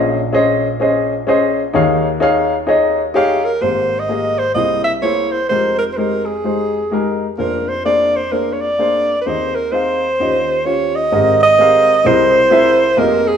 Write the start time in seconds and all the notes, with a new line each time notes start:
Already playing: A#1 A#2 C#4 G#4 C5 D#5 F5
0.33 C#4 G#4 C5 D#5
0.80 C#4 G#4 C5 D#5
1.27 C#4 G#4 C5 D#5
1.73 D#2 D#3 D#4 G#4 C#5 F5
2.20 D#4 G#4 C#5 F5
2.67 D#4 G#4 C#5 D#5
3.14 D#4 G4 G#4 C#5 F5
3.45 A#4
3.61 G#1 G#2 A#3 G4 G#4 C5
3.99 D#5
4.09 A#3 G4 G#4 D#5
4.38 C5
4.54 C2 C3 A#3 E4 G#4 C5 D#5
4.84 E5
5.02 A#3 E4 G#4 C5 C#5
5.31 C5
5.49 F1 F2 G#3 D#4 G4 A#4 C5
5.79 A#4
5.93 A#4 C5
5.97 G#3 D#4 G4 C5
6.26 G#4
6.44 G#3 D#4 G4 C5
6.91 G#3 D#4 G4 A#4
7.38 F1 F2 A#3 D4 G#4 A#4 C5
7.68 C5
7.85 A#3 D4 G#4 C5 D5
8.16 C5
8.31 A#3 D4 G#4 A#4 C5
8.53 C#5
8.61 D5
8.78 A#3 D4 G#4 C5
9.21 B4
9.26 D#2 D#3 C4 D#4 G#4 C5 D#5
9.55 A#4
9.72 C4 D#4 G#4 C5 F5
10.19 D#2 D#3 C#4 F4 G4 D#5
10.65 C#4 F4 G4 C5 C#5
10.96 D#5
11.12 G#1 G#2 C4 G4 G#4 A#4 D#5
11.43 D#5
11.59 C4 G4 G#4 A#4 F5
12.04 C2 C3 C4 E4 G#4 A#4 C5 D#5
12.50 C4 E4 G#4 A#4 E5
12.96 F1 F2 A#3 F4 G4 G#4 A#4 D#5
13.28 G#4